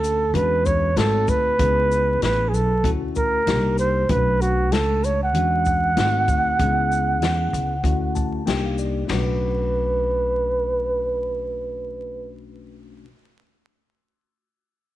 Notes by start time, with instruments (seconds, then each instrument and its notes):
Already playing: upright bass D2, tine electric piano A3 C#4 D4 F#4, flugelhorn A4
0.04 closed hi-hat, shaker
0.34 upright bass E2, tine electric piano G#3 C#4 D4 F#4, flugelhorn B4, closed hi-hat
0.66 flugelhorn C#5, kick, shaker
0.96 upright bass G#1, tine electric piano A3 C4 D#4 F#4, flugelhorn A4, snare, closed hi-hat
1.28 upright bass D2, flugelhorn B4, kick, shaker
1.58 upright bass C#2, tine electric piano B3 C#4 E4 G#4, kick, closed hi-hat
1.92 shaker
2.22 upright bass A1, flugelhorn B4, snare, closed hi-hat
2.49 flugelhorn G#4
2.53 upright bass B1, flugelhorn A4, shaker
2.83 upright bass D2, tine electric piano A3 C#4 E4 F#4, kick, closed hi-hat
3.15 flugelhorn A#4, kick, shaker
3.46 upright bass C2, tine electric piano A#3 D4 D#4 G4, snare, closed hi-hat
3.78 flugelhorn C5, shaker
4.09 upright bass B1, tine electric piano A3 C#4 D4 F#4, flugelhorn B4, kick, closed hi-hat
4.41 flugelhorn F#4, closed hi-hat, shaker
4.72 upright bass C#2, flugelhorn A4, snare, closed hi-hat
5.04 flugelhorn C#5, closed hi-hat, shaker
5.23 flugelhorn F#5
5.33 upright bass E2, tine electric piano G#3 C#4 D4 F#4, closed hi-hat
5.65 kick, shaker
5.96 upright bass G#1, tine electric piano A3 C4 D#4 F4, snare, closed hi-hat
6.05 tine electric piano F#4
6.28 upright bass D2, kick, shaker
6.59 upright bass C#2, tine electric piano B3 C#4 D4 G#4, kick, closed hi-hat
6.66 tine electric piano E4
6.92 shaker
7.22 upright bass E2, snare, closed hi-hat
7.53 upright bass C#2, closed hi-hat, shaker
7.83 upright bass D2, tine electric piano A3 C#4 E4 F#4, kick, closed hi-hat
8.15 tine electric piano A5, kick, shaker
8.46 upright bass C2, tine electric piano A#3 D4 D#4 G4 G5, snare, closed hi-hat
8.66 tine electric piano F5
8.78 tine electric piano D5, shaker
9.05 tine electric piano A3 C#4
9.09 upright bass B1, tine electric piano D4, flugelhorn B4, snare, floor tom, ride bell
9.14 tine electric piano F#4